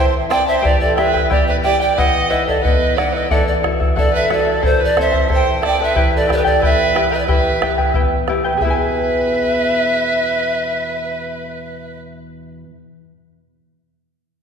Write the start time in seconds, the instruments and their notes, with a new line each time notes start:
Already playing: nylon-string guitar E3, charango E4 C5 E5
0.00 fiddle C5, charango A5
0.29 nylon-string guitar C4, charango E4 C5 E5 A5, fiddle D5, pan flute G5, bombo rim
0.46 charango E4 C5 A5, fiddle C5, pan flute E5
0.59 charango E4 G4 E5 G5, fiddle C5, pan flute E5
0.63 nylon-string guitar E3, fiddle G4, charango B4, pan flute D5, bombo low
0.80 fiddle A4, pan flute D5
0.96 charango E4 B4 E5 G5, nylon-string guitar G4, fiddle B4, pan flute E5, bombo rim
1.13 charango E4 B4 G5, bombo low
1.30 nylon-string guitar B3, charango E4 B4 E5 G5, fiddle G4, pan flute D5, bombo low
1.47 fiddle B4, pan flute E5
1.63 charango E4 B4 E5 G5, nylon-string guitar G4, fiddle D5, pan flute G5
1.80 charango E4 B4 G5, fiddle D5, pan flute G5
1.97 nylon-string guitar E3, charango E4 B4 D#5 F#5, fiddle D#5, pan flute F#5, bombo low
2.30 nylon-string guitar D#4, charango E4 D#5 E5 F#5, fiddle B4, pan flute D#5, bombo low
2.47 charango E4 D#5 E5, fiddle A4, pan flute D5, bombo low
2.62 nylon-string guitar B3, charango E4 D#5 F#5, fiddle B4, pan flute D#5, bombo low
2.97 charango E4 D#5 E5 F#5, fiddle D5, pan flute F#5, bombo rim
3.13 charango E4 D#5 E5, fiddle B4, pan flute D#5
3.30 nylon-string guitar E3, charango E4 A4 D5 E5 F#5, fiddle A4, pan flute D5, bombo low
3.47 fiddle A4, pan flute D5
3.63 charango E4 A4 E5 F#5, nylon-string guitar F#4, bombo rim, bombo low
3.80 charango E4 A4 E5, bombo low
3.96 nylon-string guitar D4, charango E4 A4 E5 F#5, fiddle A4, pan flute D5, bombo low
4.13 fiddle B4, pan flute E5
4.29 charango E4 A4 E5 F#5, nylon-string guitar F#4, fiddle A4, pan flute D5, bombo rim
4.45 charango E4 A4 E5
4.62 nylon-string guitar E3, charango E4 A4 C5 E5 A5, fiddle A4, pan flute C5, bombo low
4.80 fiddle B4
4.84 pan flute D5
4.96 nylon-string guitar C4, charango E4 A4 E5 A5, fiddle C5, bombo rim, bombo low
5.01 pan flute E5
5.12 charango E4 A4 A5, bombo low
5.28 nylon-string guitar E3, charango E4 A4 E5 A5, fiddle C5, bombo low
5.35 pan flute G5
5.61 nylon-string guitar C4, charango E4 A4 E5 A5, fiddle D5, bombo rim
5.67 pan flute G5
5.80 charango E4 A4 A5, fiddle B4
5.84 pan flute E5
5.95 nylon-string guitar E3, charango E4 G4 B4 E5 G5, bombo low
6.15 fiddle A4, pan flute D5
6.27 charango E4 B4 E5 G5, nylon-string guitar G4, fiddle A4, bombo rim, bombo low
6.32 fiddle G4, pan flute D5
6.37 pan flute B4
6.43 charango E4 B4 G5, fiddle A4, pan flute D5, bombo low
6.61 nylon-string guitar B3, charango E4 B4 E5 G5, fiddle B4, pan flute E5, bombo low
6.94 charango E4 B4 E5 G5, nylon-string guitar G4, bombo rim
7.11 charango E4 B4 G5, fiddle B4, pan flute E5
7.19 fiddle B4, pan flute D5
7.26 nylon-string guitar E3, charango E4 G4 B4 E5 G5, fiddle B4, pan flute E5, bombo low
7.61 charango E4 B4 E5 G5, nylon-string guitar G4, bombo rim, bombo low
7.78 charango E4 B4 G5, bombo low
7.94 nylon-string guitar B3, charango E4 B4 E5 G5, bombo low
8.28 charango E4 B4 E5 G5, nylon-string guitar G4, bombo rim
8.45 charango E4 B4 G5
8.52 nylon-string guitar E2
8.57 nylon-string guitar B2 E3, charango G#4, fiddle B4
8.61 nylon-string guitar B3, charango E4 E5, pan flute E5, bombo low
8.67 nylon-string guitar G#4 B4, charango B4 G#5